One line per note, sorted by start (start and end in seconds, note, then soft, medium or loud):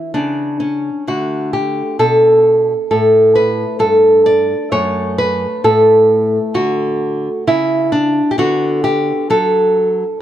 0.00 1.03 A3 soft
0.00 0.11 E4 medium
0.14 0.89 C#3 soft
0.14 0.59 D4 medium
0.60 1.05 C#4 medium
1.07 1.82 D3 soft
1.07 4.69 A3 soft
1.07 1.52 F#4 medium
1.53 1.98 G4 medium
1.99 2.73 B2 soft
1.99 2.87 A4 medium
2.91 3.64 A2 soft
2.91 3.34 A4 medium
3.35 3.79 B4 medium
3.79 4.53 G2 soft
3.79 4.24 A4 medium
4.26 4.71 D5 medium
4.72 5.45 F#2 medium
4.72 8.33 A3 soft
4.72 5.16 C#5 medium
5.18 5.62 B4 medium
5.64 6.37 A2 soft
5.64 6.52 A4 medium
6.54 7.28 D3 medium
6.54 7.43 F#4 medium
7.47 8.20 C#3 medium
7.47 7.91 E4 medium
7.92 8.29 D4 medium
8.31 8.38 G4 medium
8.38 9.11 D3 medium
8.38 10.17 B3 soft
8.38 8.82 F#4 medium
8.84 9.28 G4 medium
9.30 10.03 F#3 medium
9.30 10.17 A4 medium